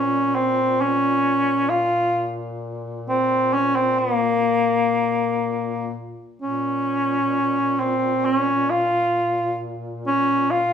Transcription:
Already playing: duduk A#2, cor anglais C#4
0.35 cor anglais C4
0.81 cor anglais C#4
1.69 cor anglais F4
3.09 cor anglais C4
3.53 cor anglais C#4
3.76 cor anglais C4
3.98 cor anglais A#3
6.40 duduk A#2, cor anglais C#4
7.80 cor anglais C4
8.25 cor anglais C#4
8.70 cor anglais F4
10.07 cor anglais C#4
10.51 cor anglais F4

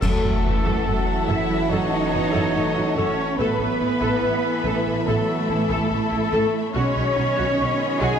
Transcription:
0.01 double bass section F#2, trombone section E3 F#3, string section E3 C#4 F#5 A5, french horn section F#3, cello section A3, trumpet section A4, viola section A4, violin section A4 E5 F#5, concert bass drum, crash
0.22 double bass section F#2, viola section A4
0.43 double bass section F#2, french horn section E3, viola section F#4
0.65 double bass section F#2, viola section A4
0.85 double bass section F#2, french horn section F#3, viola section A4
1.27 double bass section F#2, french horn section A3, cello section E4, viola section A4, trumpet section E5, violin section E5
1.49 double bass section F#2, viola section A4
1.70 double bass section F#2, french horn section A3, cello section D#4, viola section A4, trumpet section C#5, violin section D#5
2.12 double bass section F#2, french horn section B3, viola section F#4
2.33 double bass section F#2, viola section A4
2.53 double bass section F#2, french horn section A3, viola section A4
2.76 double bass section F#2, viola section F#4
2.96 double bass section F#2, french horn section A3, cello section C#4, viola section A4, trumpet section C#5, violin section C#5
3.37 double bass section A1, trombone section E3 A3, french horn section F#3, string section B3 E4 A4 E5, cello section B3, viola section A4, trumpet section B4, violin section B4 E5 B5
3.59 double bass section A1, viola section A4
3.80 double bass section A1, french horn section E3, viola section E4
4.01 double bass section A1, viola section A4
4.22 double bass section A1, viola section A4
4.65 double bass section A1, viola section A4
4.85 double bass section A1, viola section A4
5.06 double bass section A1, french horn section F#3, cello section A3, trumpet section A4, viola section A4, violin section A4
5.48 double bass section A1, french horn section E3, viola section E4
5.69 double bass section A1, viola section A4
5.90 double bass section A1, french horn section A3, viola section A4
6.11 double bass section A1, viola section E4
6.32 double bass section A1, viola section A4
6.73 double bass section B1, trombone section D#3 F#3, french horn section G#3, string section B3 F#4 D#5, cello section C#4, viola section F#4 C#5, trumpet section C#5, violin section C#5 D#5 B5
6.78 string section C#4
6.95 double bass section B1, viola section F#4
7.15 double bass section B1, french horn section F#3, viola section D#4
7.36 double bass section B1, viola section F#4
7.59 double bass section B1, french horn section G#3, viola section F#4
8.00 double bass section B1, viola section F#4, cello section G#4, violin section G#5, trumpet section G#5

